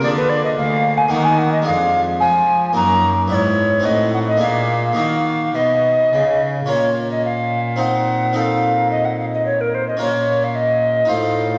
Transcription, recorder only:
0.04 0.10 D5 loud
0.17 0.31 B4 medium
0.29 0.44 D5 loud
0.44 0.50 D#5 medium
0.57 0.99 F5 loud
0.98 1.12 G#5 loud
1.11 1.26 F#5 loud
1.25 1.40 G#5 loud
1.39 1.52 F#5 loud
1.52 1.58 D#5 medium
1.66 2.01 F5 loud
2.20 2.72 G#5 loud
2.76 3.06 A#5 loud
3.31 3.87 C#5 loud
3.31 3.35 D5 medium
3.85 4.13 D#5 medium
4.13 4.19 F#5 medium
4.28 4.41 D#5 medium
4.42 4.96 F5 loud
4.97 5.57 F5 medium
5.55 6.41 D#5 medium
6.69 7.08 C#5 medium
7.11 7.24 D#5 medium
7.25 7.82 F5 medium
7.80 8.36 F#5 medium
8.37 8.91 F5 medium
8.91 9.06 D#5 medium
9.05 9.19 F#5 medium
9.20 9.26 F5 medium
9.34 9.45 D#5 medium
9.46 9.62 C#5 medium
9.61 9.76 A#4 medium
9.75 9.87 C5 medium
9.88 10.01 D#5 medium
10.02 10.46 C#5 medium
10.44 10.57 F5 medium
10.56 11.11 D#5 medium
11.10 11.58 F5 medium

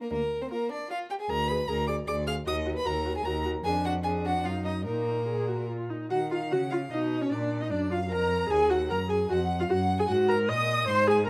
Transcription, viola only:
0.51 0.80 F4 medium
0.91 1.20 F4 medium
1.29 1.37 G#4 soft
1.50 1.58 G#4 soft
1.69 1.77 G#4 medium
1.88 1.96 G#4 soft
2.07 2.15 G#4 soft
2.27 2.35 G#4 medium
2.46 2.54 F#4 medium
2.65 2.73 F#4 soft
2.85 2.93 F#4 medium
3.05 3.13 F#4 medium
3.26 3.34 F#4 soft
3.45 3.53 F#4 medium
3.65 4.02 D4 medium
4.05 4.47 D4 medium
4.46 4.86 D#4 soft
4.86 5.23 D#4 soft
5.28 5.50 G#4 medium
5.48 5.69 F#4 medium
5.70 5.92 F4 medium
5.90 6.10 D#4 soft
6.10 6.18 F#4 medium
6.31 6.39 F4 medium
6.52 6.60 F#4 medium
6.72 6.80 F4 medium
6.92 7.23 D#4 medium
7.22 7.34 C#4 medium
7.32 7.63 D4 medium
7.62 7.73 D#4 medium
7.71 7.91 D4 medium
7.91 7.99 F4 medium
8.10 8.49 A#4 medium
8.50 8.72 G#4 medium
8.70 8.90 F#4 medium
8.90 8.98 A#4 medium
9.10 9.29 G#4 medium
9.30 9.38 F#4 medium
9.60 9.64 F4 medium
9.69 9.77 F#4 medium
10.00 10.03 G#4 medium
10.09 10.30 F#4 medium
10.29 10.50 A#4 medium
10.49 10.88 D#5 medium
10.88 11.09 C5 loud
11.08 11.26 G#4 loud

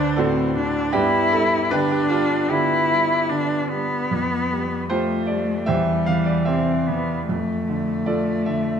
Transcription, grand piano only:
0.00 0.91 D2 medium
0.00 0.41 D3 medium
0.00 0.96 B4 loud
0.00 0.17 C5 loud
0.16 0.79 A2 soft
0.16 0.90 D4 medium
0.16 0.90 F#4 medium
0.16 0.94 A4 medium
0.57 0.95 D3 soft
0.93 2.47 G2 medium
0.93 1.31 B3 medium
0.93 1.30 D4 medium
0.93 1.33 G4 loud
1.32 1.97 G3 medium
1.32 1.72 A4 medium
1.71 2.36 D3 medium
1.71 1.91 D4 medium
1.71 1.90 G4 medium
1.71 1.92 B4 loud
1.91 2.11 G4 medium
2.10 2.75 G3 medium
2.10 2.50 F4 medium
2.49 3.13 D3 medium
2.49 3.65 B3 medium
2.49 3.65 D4 medium
2.49 3.68 G4 medium
2.91 3.54 G3 medium
3.31 3.95 D3 soft
3.72 4.11 G3 soft
4.11 5.64 F2 medium
4.52 5.13 G3 medium
4.90 5.53 F3 soft
4.90 5.26 F4 medium
4.90 5.26 G4 medium
4.90 5.28 C5 medium
5.27 5.68 G3 soft
5.27 5.67 D5 medium
5.66 7.23 E2 medium
5.66 6.04 G4 medium
5.66 6.04 C5 medium
5.66 6.06 E5 medium
6.06 6.72 E3 soft
6.06 6.27 F5 medium
6.26 6.46 D5 medium
6.45 7.11 C3 soft
6.45 7.23 G4 medium
6.45 7.22 C5 medium
6.45 7.26 E5 medium
6.90 7.28 E3 soft
7.29 8.80 F2 medium
7.68 8.32 D3 soft
8.06 8.72 F3 soft
8.06 8.45 F4 medium
8.06 8.45 A4 medium
8.06 8.47 D5 medium
8.46 8.80 D3 soft
8.46 8.80 E5 medium

